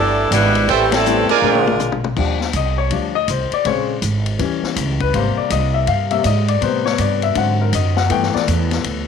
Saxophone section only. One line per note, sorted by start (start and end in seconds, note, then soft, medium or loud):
0.00 0.30 G3 medium
0.00 0.30 D4 medium
0.00 0.30 E4 medium
0.00 0.30 A4 medium
0.33 0.67 G3 medium
0.33 0.67 D4 medium
0.33 0.67 E4 medium
0.33 0.67 B4 medium
0.69 0.93 E3 medium
0.69 0.93 A3 medium
0.69 0.91 C4 medium
0.69 0.93 G4 medium
0.92 1.30 G3 medium
0.92 1.29 C4 medium
0.92 1.30 E4 medium
0.92 1.29 A4 loud
1.29 1.99 G#3 medium
1.29 1.99 D4 medium
1.29 1.99 F4 medium
1.29 1.99 A#4 medium